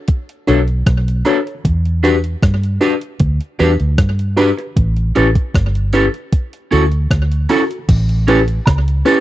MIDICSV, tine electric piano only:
0, 0, Header, 1, 2, 480
1, 0, Start_track
1, 0, Tempo, 779930
1, 1014, Time_signature, 4, 2, 24, 8
1, 5663, End_track
2, 0, Start_track
2, 0, Title_t, "Tine electric piano"
2, 0, Program_c, 0, 4
2, 292, Note_on_c, 0, 62, 88
2, 292, Note_on_c, 0, 66, 79
2, 295, Note_on_c, 0, 69, 83
2, 296, Note_on_c, 0, 73, 96
2, 373, Note_off_c, 0, 62, 0
2, 373, Note_off_c, 0, 66, 0
2, 375, Note_off_c, 0, 69, 0
2, 375, Note_off_c, 0, 73, 0
2, 772, Note_on_c, 0, 66, 84
2, 774, Note_on_c, 0, 62, 97
2, 776, Note_on_c, 0, 69, 83
2, 777, Note_on_c, 0, 73, 105
2, 853, Note_off_c, 0, 66, 0
2, 854, Note_off_c, 0, 62, 0
2, 855, Note_off_c, 0, 69, 0
2, 855, Note_off_c, 0, 73, 0
2, 897, Note_on_c, 0, 69, 44
2, 898, Note_on_c, 0, 73, 49
2, 943, Note_off_c, 0, 69, 0
2, 944, Note_off_c, 0, 73, 0
2, 1255, Note_on_c, 0, 62, 93
2, 1255, Note_on_c, 0, 66, 92
2, 1256, Note_on_c, 0, 67, 90
2, 1258, Note_on_c, 0, 71, 104
2, 1334, Note_off_c, 0, 62, 0
2, 1334, Note_off_c, 0, 66, 0
2, 1335, Note_off_c, 0, 67, 0
2, 1336, Note_off_c, 0, 71, 0
2, 1726, Note_on_c, 0, 62, 96
2, 1727, Note_on_c, 0, 66, 80
2, 1729, Note_on_c, 0, 67, 86
2, 1730, Note_on_c, 0, 71, 97
2, 1810, Note_off_c, 0, 62, 0
2, 1811, Note_off_c, 0, 66, 0
2, 1811, Note_off_c, 0, 67, 0
2, 1812, Note_off_c, 0, 71, 0
2, 2211, Note_on_c, 0, 62, 88
2, 2211, Note_on_c, 0, 66, 77
2, 2213, Note_on_c, 0, 67, 82
2, 2215, Note_on_c, 0, 71, 93
2, 2292, Note_off_c, 0, 62, 0
2, 2292, Note_off_c, 0, 66, 0
2, 2293, Note_off_c, 0, 67, 0
2, 2295, Note_off_c, 0, 71, 0
2, 2687, Note_on_c, 0, 66, 83
2, 2689, Note_on_c, 0, 62, 92
2, 2690, Note_on_c, 0, 67, 84
2, 2693, Note_on_c, 0, 71, 98
2, 2771, Note_off_c, 0, 62, 0
2, 2771, Note_off_c, 0, 66, 0
2, 2772, Note_off_c, 0, 67, 0
2, 2774, Note_off_c, 0, 71, 0
2, 2816, Note_on_c, 0, 71, 50
2, 2819, Note_on_c, 0, 67, 44
2, 2863, Note_off_c, 0, 71, 0
2, 2864, Note_off_c, 0, 67, 0
2, 3174, Note_on_c, 0, 67, 81
2, 3175, Note_on_c, 0, 61, 97
2, 3177, Note_on_c, 0, 64, 89
2, 3180, Note_on_c, 0, 71, 97
2, 3254, Note_off_c, 0, 61, 0
2, 3254, Note_off_c, 0, 67, 0
2, 3255, Note_off_c, 0, 64, 0
2, 3257, Note_off_c, 0, 71, 0
2, 3653, Note_on_c, 0, 61, 87
2, 3654, Note_on_c, 0, 64, 81
2, 3655, Note_on_c, 0, 67, 82
2, 3655, Note_on_c, 0, 71, 94
2, 3733, Note_off_c, 0, 61, 0
2, 3734, Note_off_c, 0, 64, 0
2, 3734, Note_off_c, 0, 71, 0
2, 3735, Note_off_c, 0, 67, 0
2, 4135, Note_on_c, 0, 64, 71
2, 4136, Note_on_c, 0, 61, 77
2, 4138, Note_on_c, 0, 66, 72
2, 4138, Note_on_c, 0, 69, 93
2, 4214, Note_off_c, 0, 64, 0
2, 4215, Note_off_c, 0, 61, 0
2, 4216, Note_off_c, 0, 66, 0
2, 4216, Note_off_c, 0, 69, 0
2, 4614, Note_on_c, 0, 61, 91
2, 4617, Note_on_c, 0, 66, 84
2, 4619, Note_on_c, 0, 64, 86
2, 4619, Note_on_c, 0, 69, 104
2, 4694, Note_off_c, 0, 61, 0
2, 4695, Note_off_c, 0, 66, 0
2, 4696, Note_off_c, 0, 64, 0
2, 4696, Note_off_c, 0, 69, 0
2, 4739, Note_on_c, 0, 66, 44
2, 4740, Note_on_c, 0, 69, 50
2, 4784, Note_off_c, 0, 66, 0
2, 4785, Note_off_c, 0, 69, 0
2, 5096, Note_on_c, 0, 64, 92
2, 5098, Note_on_c, 0, 61, 98
2, 5099, Note_on_c, 0, 67, 94
2, 5100, Note_on_c, 0, 71, 110
2, 5175, Note_off_c, 0, 61, 0
2, 5175, Note_off_c, 0, 64, 0
2, 5176, Note_off_c, 0, 67, 0
2, 5176, Note_off_c, 0, 71, 0
2, 5572, Note_on_c, 0, 64, 84
2, 5573, Note_on_c, 0, 61, 93
2, 5574, Note_on_c, 0, 67, 83
2, 5575, Note_on_c, 0, 71, 105
2, 5652, Note_off_c, 0, 64, 0
2, 5653, Note_off_c, 0, 61, 0
2, 5654, Note_off_c, 0, 67, 0
2, 5654, Note_off_c, 0, 71, 0
2, 5663, End_track
0, 0, End_of_file